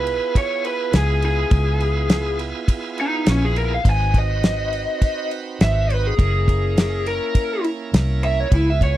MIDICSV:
0, 0, Header, 1, 5, 480
1, 0, Start_track
1, 0, Tempo, 583658
1, 1252, Time_signature, 4, 2, 24, 8
1, 7379, End_track
2, 0, Start_track
2, 0, Title_t, "Lead electric guitar"
2, 0, Program_c, 0, 29
2, 0, Note_on_c, 0, 71, 93
2, 288, Note_off_c, 0, 71, 0
2, 310, Note_on_c, 0, 73, 94
2, 534, Note_off_c, 0, 73, 0
2, 543, Note_on_c, 0, 71, 92
2, 771, Note_off_c, 0, 71, 0
2, 787, Note_on_c, 0, 68, 82
2, 1012, Note_off_c, 0, 68, 0
2, 1032, Note_on_c, 0, 68, 90
2, 1953, Note_off_c, 0, 68, 0
2, 2475, Note_on_c, 0, 63, 90
2, 2696, Note_off_c, 0, 63, 0
2, 2712, Note_on_c, 0, 61, 94
2, 2822, Note_off_c, 0, 61, 0
2, 2836, Note_on_c, 0, 68, 79
2, 2938, Note_off_c, 0, 68, 0
2, 2943, Note_on_c, 0, 70, 72
2, 3058, Note_off_c, 0, 70, 0
2, 3078, Note_on_c, 0, 77, 75
2, 3199, Note_off_c, 0, 77, 0
2, 3199, Note_on_c, 0, 80, 82
2, 3418, Note_off_c, 0, 80, 0
2, 3442, Note_on_c, 0, 75, 90
2, 4358, Note_off_c, 0, 75, 0
2, 4625, Note_on_c, 0, 76, 99
2, 4875, Note_off_c, 0, 76, 0
2, 4875, Note_on_c, 0, 71, 82
2, 4992, Note_off_c, 0, 71, 0
2, 4992, Note_on_c, 0, 68, 91
2, 5794, Note_off_c, 0, 68, 0
2, 5820, Note_on_c, 0, 70, 94
2, 6280, Note_off_c, 0, 70, 0
2, 6781, Note_on_c, 0, 76, 94
2, 6909, Note_off_c, 0, 76, 0
2, 6909, Note_on_c, 0, 73, 88
2, 7014, Note_off_c, 0, 73, 0
2, 7025, Note_on_c, 0, 64, 93
2, 7138, Note_off_c, 0, 64, 0
2, 7155, Note_on_c, 0, 76, 99
2, 7257, Note_off_c, 0, 76, 0
2, 7265, Note_on_c, 0, 73, 92
2, 7378, Note_off_c, 0, 73, 0
2, 7379, End_track
3, 0, Start_track
3, 0, Title_t, "Tonewheel organ"
3, 0, Program_c, 1, 16
3, 0, Note_on_c, 1, 59, 79
3, 0, Note_on_c, 1, 64, 66
3, 0, Note_on_c, 1, 65, 71
3, 0, Note_on_c, 1, 68, 89
3, 3133, Note_off_c, 1, 59, 0
3, 3136, Note_off_c, 1, 64, 0
3, 3142, Note_off_c, 1, 65, 0
3, 3148, Note_off_c, 1, 68, 0
3, 3153, Note_on_c, 1, 60, 61
3, 3163, Note_on_c, 1, 63, 57
3, 3169, Note_on_c, 1, 66, 60
3, 3179, Note_on_c, 1, 71, 77
3, 5048, Note_off_c, 1, 60, 0
3, 5053, Note_off_c, 1, 63, 0
3, 5057, Note_off_c, 1, 66, 0
3, 5061, Note_off_c, 1, 71, 0
3, 5070, Note_on_c, 1, 58, 64
3, 5079, Note_on_c, 1, 61, 64
3, 5092, Note_on_c, 1, 64, 59
3, 5100, Note_on_c, 1, 70, 73
3, 6967, Note_off_c, 1, 58, 0
3, 6971, Note_off_c, 1, 61, 0
3, 6978, Note_off_c, 1, 64, 0
3, 6982, Note_off_c, 1, 70, 0
3, 6985, Note_on_c, 1, 59, 74
3, 6995, Note_on_c, 1, 64, 63
3, 7002, Note_on_c, 1, 65, 64
3, 7017, Note_on_c, 1, 68, 80
3, 7379, Note_off_c, 1, 59, 0
3, 7379, Note_off_c, 1, 64, 0
3, 7379, Note_off_c, 1, 65, 0
3, 7379, Note_off_c, 1, 68, 0
3, 7379, End_track
4, 0, Start_track
4, 0, Title_t, "Fingered electric bass"
4, 0, Program_c, 2, 33
4, 0, Note_on_c, 2, 37, 93
4, 154, Note_off_c, 2, 37, 0
4, 770, Note_on_c, 2, 37, 89
4, 1181, Note_off_c, 2, 37, 0
4, 1248, Note_on_c, 2, 37, 91
4, 2071, Note_off_c, 2, 37, 0
4, 2692, Note_on_c, 2, 34, 82
4, 3102, Note_off_c, 2, 34, 0
4, 3167, Note_on_c, 2, 32, 91
4, 3990, Note_off_c, 2, 32, 0
4, 4614, Note_on_c, 2, 32, 83
4, 5023, Note_off_c, 2, 32, 0
4, 5091, Note_on_c, 2, 30, 100
4, 5912, Note_off_c, 2, 30, 0
4, 6525, Note_on_c, 2, 36, 80
4, 6938, Note_off_c, 2, 36, 0
4, 7006, Note_on_c, 2, 37, 106
4, 7379, Note_off_c, 2, 37, 0
4, 7379, End_track
5, 0, Start_track
5, 0, Title_t, "Drums"
5, 55, Note_on_c, 9, 51, 61
5, 137, Note_off_c, 9, 51, 0
5, 291, Note_on_c, 9, 36, 82
5, 295, Note_on_c, 9, 51, 80
5, 373, Note_off_c, 9, 36, 0
5, 377, Note_off_c, 9, 51, 0
5, 531, Note_on_c, 9, 51, 57
5, 613, Note_off_c, 9, 51, 0
5, 766, Note_on_c, 9, 51, 83
5, 771, Note_on_c, 9, 38, 106
5, 848, Note_off_c, 9, 51, 0
5, 853, Note_off_c, 9, 38, 0
5, 1006, Note_on_c, 9, 51, 64
5, 1088, Note_off_c, 9, 51, 0
5, 1242, Note_on_c, 9, 51, 81
5, 1245, Note_on_c, 9, 36, 113
5, 1324, Note_off_c, 9, 51, 0
5, 1327, Note_off_c, 9, 36, 0
5, 1484, Note_on_c, 9, 51, 60
5, 1566, Note_off_c, 9, 51, 0
5, 1722, Note_on_c, 9, 51, 92
5, 1727, Note_on_c, 9, 38, 104
5, 1805, Note_off_c, 9, 51, 0
5, 1810, Note_off_c, 9, 38, 0
5, 1966, Note_on_c, 9, 51, 66
5, 2049, Note_off_c, 9, 51, 0
5, 2205, Note_on_c, 9, 36, 86
5, 2207, Note_on_c, 9, 51, 94
5, 2287, Note_off_c, 9, 36, 0
5, 2289, Note_off_c, 9, 51, 0
5, 2448, Note_on_c, 9, 51, 61
5, 2531, Note_off_c, 9, 51, 0
5, 2684, Note_on_c, 9, 51, 90
5, 2689, Note_on_c, 9, 38, 112
5, 2766, Note_off_c, 9, 51, 0
5, 2771, Note_off_c, 9, 38, 0
5, 2929, Note_on_c, 9, 51, 68
5, 3011, Note_off_c, 9, 51, 0
5, 3166, Note_on_c, 9, 36, 100
5, 3168, Note_on_c, 9, 51, 80
5, 3248, Note_off_c, 9, 36, 0
5, 3250, Note_off_c, 9, 51, 0
5, 3405, Note_on_c, 9, 36, 76
5, 3407, Note_on_c, 9, 51, 55
5, 3488, Note_off_c, 9, 36, 0
5, 3490, Note_off_c, 9, 51, 0
5, 3646, Note_on_c, 9, 51, 79
5, 3651, Note_on_c, 9, 38, 110
5, 3729, Note_off_c, 9, 51, 0
5, 3734, Note_off_c, 9, 38, 0
5, 3887, Note_on_c, 9, 51, 60
5, 3969, Note_off_c, 9, 51, 0
5, 4125, Note_on_c, 9, 36, 79
5, 4125, Note_on_c, 9, 51, 79
5, 4208, Note_off_c, 9, 36, 0
5, 4208, Note_off_c, 9, 51, 0
5, 4369, Note_on_c, 9, 51, 61
5, 4451, Note_off_c, 9, 51, 0
5, 4610, Note_on_c, 9, 51, 79
5, 4615, Note_on_c, 9, 38, 110
5, 4692, Note_off_c, 9, 51, 0
5, 4697, Note_off_c, 9, 38, 0
5, 4854, Note_on_c, 9, 51, 66
5, 4936, Note_off_c, 9, 51, 0
5, 5088, Note_on_c, 9, 36, 106
5, 5092, Note_on_c, 9, 51, 74
5, 5171, Note_off_c, 9, 36, 0
5, 5174, Note_off_c, 9, 51, 0
5, 5328, Note_on_c, 9, 36, 78
5, 5335, Note_on_c, 9, 51, 59
5, 5411, Note_off_c, 9, 36, 0
5, 5418, Note_off_c, 9, 51, 0
5, 5571, Note_on_c, 9, 51, 89
5, 5576, Note_on_c, 9, 38, 118
5, 5654, Note_off_c, 9, 51, 0
5, 5659, Note_off_c, 9, 38, 0
5, 5808, Note_on_c, 9, 51, 66
5, 5891, Note_off_c, 9, 51, 0
5, 6044, Note_on_c, 9, 36, 87
5, 6044, Note_on_c, 9, 51, 79
5, 6126, Note_off_c, 9, 36, 0
5, 6126, Note_off_c, 9, 51, 0
5, 6286, Note_on_c, 9, 51, 59
5, 6368, Note_off_c, 9, 51, 0
5, 6528, Note_on_c, 9, 51, 95
5, 6533, Note_on_c, 9, 38, 116
5, 6611, Note_off_c, 9, 51, 0
5, 6616, Note_off_c, 9, 38, 0
5, 6769, Note_on_c, 9, 51, 68
5, 6851, Note_off_c, 9, 51, 0
5, 7004, Note_on_c, 9, 51, 85
5, 7005, Note_on_c, 9, 36, 109
5, 7086, Note_off_c, 9, 51, 0
5, 7087, Note_off_c, 9, 36, 0
5, 7246, Note_on_c, 9, 36, 77
5, 7251, Note_on_c, 9, 51, 58
5, 7328, Note_off_c, 9, 36, 0
5, 7333, Note_off_c, 9, 51, 0
5, 7379, End_track
0, 0, End_of_file